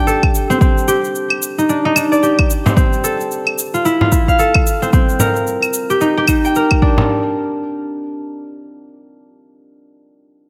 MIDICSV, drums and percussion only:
0, 0, Header, 1, 3, 480
1, 0, Start_track
1, 0, Tempo, 540541
1, 538, Time_signature, 4, 2, 24, 8
1, 9318, End_track
2, 0, Start_track
2, 0, Title_t, "Frame drum"
2, 2364, Note_on_c, 9, 64, 77
2, 2453, Note_off_c, 9, 64, 0
2, 3561, Note_on_c, 9, 64, 62
2, 3650, Note_off_c, 9, 64, 0
2, 4614, Note_on_c, 9, 64, 65
2, 4703, Note_off_c, 9, 64, 0
2, 6196, Note_on_c, 9, 64, 77
2, 6285, Note_off_c, 9, 64, 0
2, 9318, End_track
3, 0, Start_track
3, 0, Title_t, "Drums"
3, 68, Note_on_c, 9, 69, 38
3, 157, Note_off_c, 9, 69, 0
3, 205, Note_on_c, 9, 75, 68
3, 207, Note_on_c, 9, 36, 95
3, 294, Note_off_c, 9, 75, 0
3, 296, Note_off_c, 9, 36, 0
3, 309, Note_on_c, 9, 69, 71
3, 397, Note_off_c, 9, 69, 0
3, 450, Note_on_c, 9, 69, 33
3, 539, Note_off_c, 9, 69, 0
3, 544, Note_on_c, 9, 36, 112
3, 547, Note_on_c, 9, 69, 39
3, 633, Note_off_c, 9, 36, 0
3, 636, Note_off_c, 9, 69, 0
3, 691, Note_on_c, 9, 69, 28
3, 780, Note_off_c, 9, 69, 0
3, 783, Note_on_c, 9, 69, 67
3, 872, Note_off_c, 9, 69, 0
3, 927, Note_on_c, 9, 69, 28
3, 1015, Note_off_c, 9, 69, 0
3, 1024, Note_on_c, 9, 69, 40
3, 1113, Note_off_c, 9, 69, 0
3, 1158, Note_on_c, 9, 75, 54
3, 1246, Note_off_c, 9, 75, 0
3, 1264, Note_on_c, 9, 69, 69
3, 1353, Note_off_c, 9, 69, 0
3, 1410, Note_on_c, 9, 69, 30
3, 1499, Note_off_c, 9, 69, 0
3, 1504, Note_on_c, 9, 69, 40
3, 1593, Note_off_c, 9, 69, 0
3, 1740, Note_on_c, 9, 75, 77
3, 1745, Note_on_c, 9, 69, 70
3, 1829, Note_off_c, 9, 75, 0
3, 1834, Note_off_c, 9, 69, 0
3, 1888, Note_on_c, 9, 69, 31
3, 1977, Note_off_c, 9, 69, 0
3, 1982, Note_on_c, 9, 69, 34
3, 2071, Note_off_c, 9, 69, 0
3, 2119, Note_on_c, 9, 75, 78
3, 2124, Note_on_c, 9, 36, 89
3, 2208, Note_off_c, 9, 75, 0
3, 2212, Note_off_c, 9, 36, 0
3, 2222, Note_on_c, 9, 69, 71
3, 2311, Note_off_c, 9, 69, 0
3, 2366, Note_on_c, 9, 69, 31
3, 2455, Note_off_c, 9, 69, 0
3, 2460, Note_on_c, 9, 36, 102
3, 2461, Note_on_c, 9, 69, 37
3, 2549, Note_off_c, 9, 36, 0
3, 2550, Note_off_c, 9, 69, 0
3, 2603, Note_on_c, 9, 69, 24
3, 2691, Note_off_c, 9, 69, 0
3, 2702, Note_on_c, 9, 69, 66
3, 2791, Note_off_c, 9, 69, 0
3, 2846, Note_on_c, 9, 69, 28
3, 2935, Note_off_c, 9, 69, 0
3, 2943, Note_on_c, 9, 69, 40
3, 3031, Note_off_c, 9, 69, 0
3, 3079, Note_on_c, 9, 75, 54
3, 3168, Note_off_c, 9, 75, 0
3, 3183, Note_on_c, 9, 69, 71
3, 3271, Note_off_c, 9, 69, 0
3, 3322, Note_on_c, 9, 69, 30
3, 3411, Note_off_c, 9, 69, 0
3, 3422, Note_on_c, 9, 69, 37
3, 3511, Note_off_c, 9, 69, 0
3, 3660, Note_on_c, 9, 69, 70
3, 3661, Note_on_c, 9, 36, 85
3, 3749, Note_off_c, 9, 36, 0
3, 3749, Note_off_c, 9, 69, 0
3, 3803, Note_on_c, 9, 36, 52
3, 3806, Note_on_c, 9, 69, 28
3, 3892, Note_off_c, 9, 36, 0
3, 3894, Note_off_c, 9, 69, 0
3, 3899, Note_on_c, 9, 69, 36
3, 3987, Note_off_c, 9, 69, 0
3, 4036, Note_on_c, 9, 75, 74
3, 4043, Note_on_c, 9, 36, 89
3, 4124, Note_off_c, 9, 75, 0
3, 4132, Note_off_c, 9, 36, 0
3, 4143, Note_on_c, 9, 69, 68
3, 4232, Note_off_c, 9, 69, 0
3, 4286, Note_on_c, 9, 69, 30
3, 4375, Note_off_c, 9, 69, 0
3, 4378, Note_on_c, 9, 69, 39
3, 4381, Note_on_c, 9, 36, 104
3, 4467, Note_off_c, 9, 69, 0
3, 4469, Note_off_c, 9, 36, 0
3, 4521, Note_on_c, 9, 69, 27
3, 4609, Note_off_c, 9, 69, 0
3, 4617, Note_on_c, 9, 69, 70
3, 4705, Note_off_c, 9, 69, 0
3, 4760, Note_on_c, 9, 69, 27
3, 4848, Note_off_c, 9, 69, 0
3, 4858, Note_on_c, 9, 69, 38
3, 4947, Note_off_c, 9, 69, 0
3, 4995, Note_on_c, 9, 75, 54
3, 5000, Note_on_c, 9, 69, 27
3, 5084, Note_off_c, 9, 75, 0
3, 5089, Note_off_c, 9, 69, 0
3, 5093, Note_on_c, 9, 69, 64
3, 5181, Note_off_c, 9, 69, 0
3, 5241, Note_on_c, 9, 69, 29
3, 5330, Note_off_c, 9, 69, 0
3, 5337, Note_on_c, 9, 69, 39
3, 5426, Note_off_c, 9, 69, 0
3, 5572, Note_on_c, 9, 75, 75
3, 5577, Note_on_c, 9, 69, 67
3, 5581, Note_on_c, 9, 36, 54
3, 5661, Note_off_c, 9, 75, 0
3, 5666, Note_off_c, 9, 69, 0
3, 5670, Note_off_c, 9, 36, 0
3, 5725, Note_on_c, 9, 69, 28
3, 5814, Note_off_c, 9, 69, 0
3, 5819, Note_on_c, 9, 69, 36
3, 5907, Note_off_c, 9, 69, 0
3, 5956, Note_on_c, 9, 75, 67
3, 5962, Note_on_c, 9, 36, 83
3, 6045, Note_off_c, 9, 75, 0
3, 6051, Note_off_c, 9, 36, 0
3, 6059, Note_on_c, 9, 36, 101
3, 6148, Note_off_c, 9, 36, 0
3, 9318, End_track
0, 0, End_of_file